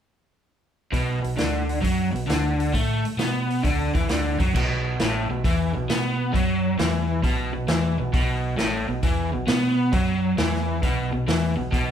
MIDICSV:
0, 0, Header, 1, 4, 480
1, 0, Start_track
1, 0, Tempo, 449775
1, 990, Time_signature, 4, 2, 24, 8
1, 12710, End_track
2, 0, Start_track
2, 0, Title_t, "Overdriven electric guitar"
2, 0, Program_c, 0, 29
2, 984, Note_on_c, 0, 47, 91
2, 1290, Note_off_c, 0, 47, 0
2, 1303, Note_on_c, 0, 47, 58
2, 1435, Note_off_c, 0, 47, 0
2, 1463, Note_on_c, 0, 50, 82
2, 1930, Note_off_c, 0, 50, 0
2, 1935, Note_on_c, 0, 54, 86
2, 2262, Note_off_c, 0, 54, 0
2, 2266, Note_on_c, 0, 47, 57
2, 2398, Note_off_c, 0, 47, 0
2, 2422, Note_on_c, 0, 50, 83
2, 2907, Note_off_c, 0, 50, 0
2, 2915, Note_on_c, 0, 57, 96
2, 3233, Note_off_c, 0, 57, 0
2, 3402, Note_on_c, 0, 59, 90
2, 3878, Note_off_c, 0, 59, 0
2, 3878, Note_on_c, 0, 50, 88
2, 4196, Note_off_c, 0, 50, 0
2, 4206, Note_on_c, 0, 52, 81
2, 4358, Note_off_c, 0, 52, 0
2, 4370, Note_on_c, 0, 50, 92
2, 4683, Note_off_c, 0, 50, 0
2, 4689, Note_on_c, 0, 54, 85
2, 4839, Note_off_c, 0, 54, 0
2, 4853, Note_on_c, 0, 47, 95
2, 5324, Note_off_c, 0, 47, 0
2, 5340, Note_on_c, 0, 45, 95
2, 5648, Note_off_c, 0, 45, 0
2, 5657, Note_on_c, 0, 47, 67
2, 5777, Note_off_c, 0, 47, 0
2, 5813, Note_on_c, 0, 52, 90
2, 6124, Note_off_c, 0, 52, 0
2, 6129, Note_on_c, 0, 47, 63
2, 6253, Note_off_c, 0, 47, 0
2, 6291, Note_on_c, 0, 59, 90
2, 6755, Note_on_c, 0, 54, 101
2, 6762, Note_off_c, 0, 59, 0
2, 7234, Note_off_c, 0, 54, 0
2, 7240, Note_on_c, 0, 52, 89
2, 7716, Note_off_c, 0, 52, 0
2, 7721, Note_on_c, 0, 47, 91
2, 8024, Note_off_c, 0, 47, 0
2, 8037, Note_on_c, 0, 47, 67
2, 8166, Note_off_c, 0, 47, 0
2, 8193, Note_on_c, 0, 52, 97
2, 8512, Note_off_c, 0, 52, 0
2, 8526, Note_on_c, 0, 47, 65
2, 8649, Note_off_c, 0, 47, 0
2, 8675, Note_on_c, 0, 47, 102
2, 9144, Note_off_c, 0, 47, 0
2, 9148, Note_on_c, 0, 45, 101
2, 9468, Note_off_c, 0, 45, 0
2, 9481, Note_on_c, 0, 47, 69
2, 9606, Note_off_c, 0, 47, 0
2, 9641, Note_on_c, 0, 52, 98
2, 9951, Note_off_c, 0, 52, 0
2, 9956, Note_on_c, 0, 47, 64
2, 10082, Note_off_c, 0, 47, 0
2, 10106, Note_on_c, 0, 59, 96
2, 10585, Note_off_c, 0, 59, 0
2, 10599, Note_on_c, 0, 54, 106
2, 11071, Note_off_c, 0, 54, 0
2, 11079, Note_on_c, 0, 52, 92
2, 11550, Note_off_c, 0, 52, 0
2, 11557, Note_on_c, 0, 47, 95
2, 11861, Note_off_c, 0, 47, 0
2, 11873, Note_on_c, 0, 47, 61
2, 11998, Note_off_c, 0, 47, 0
2, 12031, Note_on_c, 0, 52, 92
2, 12341, Note_off_c, 0, 52, 0
2, 12345, Note_on_c, 0, 47, 63
2, 12473, Note_off_c, 0, 47, 0
2, 12504, Note_on_c, 0, 47, 105
2, 12710, Note_off_c, 0, 47, 0
2, 12710, End_track
3, 0, Start_track
3, 0, Title_t, "Fingered electric bass"
3, 0, Program_c, 1, 33
3, 986, Note_on_c, 1, 35, 71
3, 1292, Note_off_c, 1, 35, 0
3, 1313, Note_on_c, 1, 35, 66
3, 1460, Note_off_c, 1, 35, 0
3, 1476, Note_on_c, 1, 38, 75
3, 1923, Note_off_c, 1, 38, 0
3, 1959, Note_on_c, 1, 42, 80
3, 2261, Note_off_c, 1, 42, 0
3, 2278, Note_on_c, 1, 35, 66
3, 2424, Note_off_c, 1, 35, 0
3, 2432, Note_on_c, 1, 38, 82
3, 2883, Note_off_c, 1, 38, 0
3, 2929, Note_on_c, 1, 45, 77
3, 3228, Note_off_c, 1, 45, 0
3, 3381, Note_on_c, 1, 47, 83
3, 3838, Note_off_c, 1, 47, 0
3, 3882, Note_on_c, 1, 38, 85
3, 4185, Note_off_c, 1, 38, 0
3, 4207, Note_on_c, 1, 40, 85
3, 4352, Note_off_c, 1, 40, 0
3, 4360, Note_on_c, 1, 38, 82
3, 4664, Note_off_c, 1, 38, 0
3, 4689, Note_on_c, 1, 42, 82
3, 4833, Note_off_c, 1, 42, 0
3, 4853, Note_on_c, 1, 35, 82
3, 5296, Note_off_c, 1, 35, 0
3, 5331, Note_on_c, 1, 33, 86
3, 5630, Note_off_c, 1, 33, 0
3, 5658, Note_on_c, 1, 35, 69
3, 5798, Note_off_c, 1, 35, 0
3, 5808, Note_on_c, 1, 40, 84
3, 6109, Note_off_c, 1, 40, 0
3, 6139, Note_on_c, 1, 35, 74
3, 6278, Note_off_c, 1, 35, 0
3, 6303, Note_on_c, 1, 47, 87
3, 6740, Note_off_c, 1, 47, 0
3, 6771, Note_on_c, 1, 42, 84
3, 7213, Note_off_c, 1, 42, 0
3, 7255, Note_on_c, 1, 40, 89
3, 7695, Note_off_c, 1, 40, 0
3, 7722, Note_on_c, 1, 35, 88
3, 8024, Note_off_c, 1, 35, 0
3, 8062, Note_on_c, 1, 35, 78
3, 8199, Note_off_c, 1, 35, 0
3, 8213, Note_on_c, 1, 40, 88
3, 8509, Note_off_c, 1, 40, 0
3, 8536, Note_on_c, 1, 35, 73
3, 8675, Note_off_c, 1, 35, 0
3, 8683, Note_on_c, 1, 35, 83
3, 9127, Note_off_c, 1, 35, 0
3, 9166, Note_on_c, 1, 33, 84
3, 9464, Note_off_c, 1, 33, 0
3, 9486, Note_on_c, 1, 35, 70
3, 9628, Note_off_c, 1, 35, 0
3, 9633, Note_on_c, 1, 40, 93
3, 9937, Note_off_c, 1, 40, 0
3, 9965, Note_on_c, 1, 35, 79
3, 10107, Note_off_c, 1, 35, 0
3, 10124, Note_on_c, 1, 47, 92
3, 10566, Note_off_c, 1, 47, 0
3, 10595, Note_on_c, 1, 42, 82
3, 11040, Note_off_c, 1, 42, 0
3, 11078, Note_on_c, 1, 40, 84
3, 11521, Note_off_c, 1, 40, 0
3, 11554, Note_on_c, 1, 35, 92
3, 11854, Note_off_c, 1, 35, 0
3, 11886, Note_on_c, 1, 35, 73
3, 12019, Note_off_c, 1, 35, 0
3, 12025, Note_on_c, 1, 40, 87
3, 12329, Note_off_c, 1, 40, 0
3, 12355, Note_on_c, 1, 35, 70
3, 12498, Note_off_c, 1, 35, 0
3, 12511, Note_on_c, 1, 35, 78
3, 12710, Note_off_c, 1, 35, 0
3, 12710, End_track
4, 0, Start_track
4, 0, Title_t, "Drums"
4, 990, Note_on_c, 9, 36, 82
4, 999, Note_on_c, 9, 46, 57
4, 1097, Note_off_c, 9, 36, 0
4, 1106, Note_off_c, 9, 46, 0
4, 1327, Note_on_c, 9, 46, 45
4, 1433, Note_off_c, 9, 46, 0
4, 1477, Note_on_c, 9, 46, 58
4, 1481, Note_on_c, 9, 38, 96
4, 1583, Note_off_c, 9, 46, 0
4, 1588, Note_off_c, 9, 38, 0
4, 1804, Note_on_c, 9, 46, 43
4, 1911, Note_off_c, 9, 46, 0
4, 1959, Note_on_c, 9, 36, 83
4, 1967, Note_on_c, 9, 46, 62
4, 2066, Note_off_c, 9, 36, 0
4, 2073, Note_off_c, 9, 46, 0
4, 2301, Note_on_c, 9, 46, 47
4, 2407, Note_off_c, 9, 46, 0
4, 2450, Note_on_c, 9, 46, 62
4, 2454, Note_on_c, 9, 38, 94
4, 2556, Note_off_c, 9, 46, 0
4, 2561, Note_off_c, 9, 38, 0
4, 2772, Note_on_c, 9, 46, 45
4, 2879, Note_off_c, 9, 46, 0
4, 2925, Note_on_c, 9, 36, 91
4, 2929, Note_on_c, 9, 46, 57
4, 3031, Note_off_c, 9, 36, 0
4, 3036, Note_off_c, 9, 46, 0
4, 3255, Note_on_c, 9, 46, 46
4, 3361, Note_off_c, 9, 46, 0
4, 3402, Note_on_c, 9, 46, 56
4, 3407, Note_on_c, 9, 38, 90
4, 3509, Note_off_c, 9, 46, 0
4, 3513, Note_off_c, 9, 38, 0
4, 3739, Note_on_c, 9, 46, 43
4, 3846, Note_off_c, 9, 46, 0
4, 3888, Note_on_c, 9, 36, 94
4, 3891, Note_on_c, 9, 46, 60
4, 3994, Note_off_c, 9, 36, 0
4, 3998, Note_off_c, 9, 46, 0
4, 4211, Note_on_c, 9, 46, 44
4, 4214, Note_on_c, 9, 36, 94
4, 4318, Note_off_c, 9, 46, 0
4, 4320, Note_off_c, 9, 36, 0
4, 4367, Note_on_c, 9, 46, 60
4, 4371, Note_on_c, 9, 38, 98
4, 4473, Note_off_c, 9, 46, 0
4, 4478, Note_off_c, 9, 38, 0
4, 4692, Note_on_c, 9, 46, 44
4, 4694, Note_on_c, 9, 36, 94
4, 4799, Note_off_c, 9, 46, 0
4, 4801, Note_off_c, 9, 36, 0
4, 4854, Note_on_c, 9, 36, 95
4, 4862, Note_on_c, 9, 49, 84
4, 4960, Note_off_c, 9, 36, 0
4, 4968, Note_off_c, 9, 49, 0
4, 5331, Note_on_c, 9, 46, 50
4, 5335, Note_on_c, 9, 38, 107
4, 5437, Note_off_c, 9, 46, 0
4, 5442, Note_off_c, 9, 38, 0
4, 5810, Note_on_c, 9, 36, 102
4, 5813, Note_on_c, 9, 46, 49
4, 5917, Note_off_c, 9, 36, 0
4, 5920, Note_off_c, 9, 46, 0
4, 6291, Note_on_c, 9, 46, 49
4, 6295, Note_on_c, 9, 38, 103
4, 6398, Note_off_c, 9, 46, 0
4, 6402, Note_off_c, 9, 38, 0
4, 6770, Note_on_c, 9, 36, 93
4, 6779, Note_on_c, 9, 46, 48
4, 6876, Note_off_c, 9, 36, 0
4, 6886, Note_off_c, 9, 46, 0
4, 7248, Note_on_c, 9, 46, 47
4, 7252, Note_on_c, 9, 38, 103
4, 7355, Note_off_c, 9, 46, 0
4, 7359, Note_off_c, 9, 38, 0
4, 7722, Note_on_c, 9, 36, 96
4, 7725, Note_on_c, 9, 46, 46
4, 7829, Note_off_c, 9, 36, 0
4, 7832, Note_off_c, 9, 46, 0
4, 8196, Note_on_c, 9, 46, 45
4, 8200, Note_on_c, 9, 38, 103
4, 8303, Note_off_c, 9, 46, 0
4, 8307, Note_off_c, 9, 38, 0
4, 8683, Note_on_c, 9, 36, 101
4, 8684, Note_on_c, 9, 46, 48
4, 8789, Note_off_c, 9, 36, 0
4, 8791, Note_off_c, 9, 46, 0
4, 9161, Note_on_c, 9, 46, 49
4, 9165, Note_on_c, 9, 38, 101
4, 9267, Note_off_c, 9, 46, 0
4, 9272, Note_off_c, 9, 38, 0
4, 9634, Note_on_c, 9, 46, 53
4, 9638, Note_on_c, 9, 36, 98
4, 9741, Note_off_c, 9, 46, 0
4, 9744, Note_off_c, 9, 36, 0
4, 10114, Note_on_c, 9, 46, 51
4, 10118, Note_on_c, 9, 38, 101
4, 10221, Note_off_c, 9, 46, 0
4, 10225, Note_off_c, 9, 38, 0
4, 10592, Note_on_c, 9, 46, 51
4, 10597, Note_on_c, 9, 36, 98
4, 10698, Note_off_c, 9, 46, 0
4, 10704, Note_off_c, 9, 36, 0
4, 11076, Note_on_c, 9, 46, 49
4, 11080, Note_on_c, 9, 38, 102
4, 11183, Note_off_c, 9, 46, 0
4, 11187, Note_off_c, 9, 38, 0
4, 11253, Note_on_c, 9, 38, 29
4, 11359, Note_off_c, 9, 38, 0
4, 11555, Note_on_c, 9, 46, 45
4, 11557, Note_on_c, 9, 36, 95
4, 11662, Note_off_c, 9, 46, 0
4, 11663, Note_off_c, 9, 36, 0
4, 12040, Note_on_c, 9, 46, 46
4, 12044, Note_on_c, 9, 38, 97
4, 12146, Note_off_c, 9, 46, 0
4, 12151, Note_off_c, 9, 38, 0
4, 12515, Note_on_c, 9, 36, 95
4, 12526, Note_on_c, 9, 46, 44
4, 12622, Note_off_c, 9, 36, 0
4, 12632, Note_off_c, 9, 46, 0
4, 12710, End_track
0, 0, End_of_file